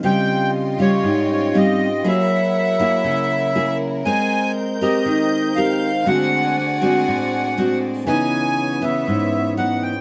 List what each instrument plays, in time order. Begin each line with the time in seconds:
0.01 nylon-string guitar C#3 G3 C4 F4, vibraphone F4 G4 D#5 C6, violin section F4 D#5 G5 C6, accordion G5
0.06 vibraphone F5
0.79 nylon-string guitar G3 F4, accordion C#5
1.03 nylon-string guitar G#2
1.28 vibraphone C#4 F4 G4 C5 D#5 F5
1.33 accordion C#5
1.54 nylon-string guitar G3 C4 F4, accordion D#5
2.02 vibraphone F#3 G#4 A#4, nylon-string guitar F#3 A#3 E4 G#4, violin section E4 A#4 F#5
2.07 vibraphone C#5 E5, accordion E5
2.58 accordion E5
2.80 nylon-string guitar A#3 E4 G#4
3.04 nylon-string guitar C#3
3.55 nylon-string guitar A#3 E4 G#4
4.03 vibraphone G#3 G#4 A#4, nylon-string guitar G#3 C4 A#4, violin section C4 G6, accordion G#5
4.07 vibraphone C5
4.81 nylon-string guitar C4 G4 A#4, accordion D#5
5.06 nylon-string guitar D#3
5.56 nylon-string guitar C4 G4 A#4, accordion F5
6.03 nylon-string guitar D3 G#3 C4, vibraphone A3 D4 G#4, violin section F#4 D5 G#5
6.07 nylon-string guitar F#4, accordion F#5, vibraphone F#5
6.58 accordion F#5
6.82 nylon-string guitar G#3 C4 F#4
7.08 nylon-string guitar A2
7.58 nylon-string guitar G#3 C4 F#4
8.04 nylon-string guitar C#3 E3 B3 D#4, violin section B3 C#5, vibraphone C#4 G#4 B4, accordion G#5
8.09 vibraphone E4 D#6
8.82 nylon-string guitar E3 B3, accordion E5
9.08 nylon-string guitar G#2
9.57 nylon-string guitar E3 B3 D#4, accordion F#5
9.83 accordion G5